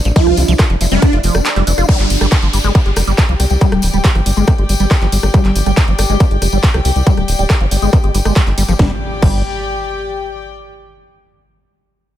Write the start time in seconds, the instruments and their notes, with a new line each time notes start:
Already playing: ambient pad D4
0.05 analog synth bass A1, acid bass F3, closed hi-hat, tambourine
0.16 acid bass F3, digital synth lead F4, kick, closed hi-hat, tambourine
0.27 analog synth bass C2, cross-stick, closed hi-hat
0.37 analog synth bass C2, acid bass E3, wobble bass E4, open hi-hat, tambourine
0.48 analog synth bass C2, acid bass F3, closed hi-hat, tambourine
0.59 acid bass F4, kick, cross-stick, clap, closed hi-hat, tambourine
0.70 analog synth bass F1, acid bass E3, closed hi-hat
0.81 analog synth bass F1, acid bass F3, wobble bass E4, open hi-hat, tambourine
0.91 analog synth bass F1, acid bass G3, digital synth lead D4, wobble bass E4, closed hi-hat, tambourine
1.02 wobble bass E4, kick, cross-stick, closed hi-hat, tambourine
1.13 analog synth bass F1, wobble bass E4, acid bass F4, closed hi-hat
1.23 analog synth bass F1, acid bass F3, open hi-hat, tambourine
1.34 analog synth bass F1, acid bass G3, cross-stick, closed hi-hat, tambourine
1.45 clap, closed hi-hat, tambourine
1.56 analog synth bass F1, acid bass G3, clap, closed hi-hat
1.67 analog synth bass F1, acid bass E3, open hi-hat, tambourine
1.78 analog synth bass F1, acid bass F4, cross-stick, closed hi-hat, tambourine
1.89 acid bass G3, string section G4, kick, cross-stick, closed hi-hat, crash, downlifter
1.99 analog synth bass G1, clap, closed hi-hat
2.10 analog synth bass G1, acid bass F3, open hi-hat, tambourine
2.21 analog synth bass G1, acid bass G3, cross-stick, closed hi-hat, tambourine
2.27 string section D5
2.32 acid bass G4, kick, clap, closed hi-hat, tambourine
2.43 analog synth bass G1, acid bass F3, closed hi-hat
2.53 analog synth bass G1, acid bass G3, open hi-hat, tambourine
2.64 analog synth bass G1, acid bass G#3, cross-stick, closed hi-hat, tambourine
2.75 acid bass B3, kick, closed hi-hat, tambourine
2.86 analog synth bass G1, acid bass G4, closed hi-hat
2.96 analog synth bass F1, acid bass G3, string section G5, cross-stick, open hi-hat, tambourine
3.07 analog synth bass G1, acid bass G3, closed hi-hat, tambourine
3.18 kick, clap, closed hi-hat, tambourine
3.29 analog synth bass C2, acid bass F3, closed hi-hat
3.40 analog synth bass C2, acid bass G3, cross-stick, open hi-hat, tambourine
3.50 analog synth bass C2, acid bass G3, closed hi-hat, tambourine
3.61 acid bass G3, kick, closed hi-hat, tambourine
3.72 analog synth bass D1, cross-stick, closed hi-hat
3.82 analog synth bass D1, acid bass F3, open hi-hat, tambourine
3.93 analog synth bass D1, acid bass G3, closed hi-hat, tambourine
4.04 acid bass G4, kick, clap, closed hi-hat, tambourine
4.15 analog synth bass G1, acid bass F3, cross-stick, closed hi-hat
4.26 analog synth bass G1, acid bass G3, open hi-hat, tambourine
4.37 analog synth bass G1, acid bass G#3, closed hi-hat, tambourine
4.47 acid bass B3, kick, cross-stick, closed hi-hat, tambourine
4.58 analog synth bass G1, acid bass G4, closed hi-hat
4.69 analog synth bass G1, acid bass G3, open hi-hat, tambourine
4.80 analog synth bass G1, acid bass G3, closed hi-hat, tambourine
4.91 kick, cross-stick, clap, closed hi-hat, tambourine
5.02 analog synth bass G1, acid bass F3, clap, closed hi-hat
5.12 analog synth bass G1, acid bass G3, open hi-hat, tambourine
5.23 analog synth bass G1, acid bass G3, cross-stick, closed hi-hat, tambourine
5.34 acid bass G3, kick, closed hi-hat, tambourine
5.45 analog synth bass G1, clap, closed hi-hat
5.55 analog synth bass G1, acid bass F3, open hi-hat, tambourine
5.66 analog synth bass G1, acid bass G3, cross-stick, closed hi-hat, tambourine
5.77 acid bass G4, kick, clap, closed hi-hat, tambourine
5.88 analog synth bass G1, acid bass F3, closed hi-hat
5.98 analog synth bass G1, acid bass G3, cross-stick, open hi-hat, tambourine
6.09 analog synth bass G1, acid bass G#3, closed hi-hat, tambourine
6.20 acid bass B3, kick, closed hi-hat, tambourine
6.31 analog synth bass G1, acid bass G4, closed hi-hat
6.42 analog synth bass F1, acid bass G3, cross-stick, open hi-hat, tambourine
6.52 analog synth bass G1, acid bass G3, closed hi-hat, tambourine
6.63 kick, clap, closed hi-hat
6.74 analog synth bass C2, acid bass F3, cross-stick, closed hi-hat
6.85 analog synth bass C2, acid bass G3, open hi-hat, tambourine
6.96 analog synth bass C2, acid bass G3, closed hi-hat, tambourine
7.07 acid bass G3, kick, closed hi-hat, tambourine
7.17 analog synth bass D1, cross-stick, closed hi-hat
7.28 analog synth bass D1, acid bass F3, open hi-hat, tambourine
7.39 analog synth bass D1, acid bass G3, closed hi-hat, tambourine
7.49 acid bass G4, kick, cross-stick, clap, closed hi-hat, tambourine
7.61 analog synth bass G1, acid bass F3, closed hi-hat
7.71 analog synth bass G1, acid bass G3, open hi-hat, tambourine
7.82 analog synth bass G1, acid bass G#3, closed hi-hat, tambourine
7.93 acid bass B3, kick, cross-stick, closed hi-hat
8.04 analog synth bass G1, acid bass G4, closed hi-hat
8.15 analog synth bass G1, acid bass G3, open hi-hat, tambourine
8.25 analog synth bass G1, acid bass G#3, cross-stick, closed hi-hat, tambourine
8.36 acid bass G3, kick, clap, closed hi-hat, tambourine
8.47 analog synth bass G1, acid bass G3, clap, closed hi-hat
8.58 analog synth bass G1, acid bass G3, open hi-hat, tambourine
8.68 analog synth bass G1, acid bass F3, cross-stick, closed hi-hat, tambourine
8.79 analog synth bass G1, acid bass G3, string section G4, kick, snare, impact
8.86 string section D5
8.92 string section G5
9.22 analog synth bass G1, acid bass G3, kick, crash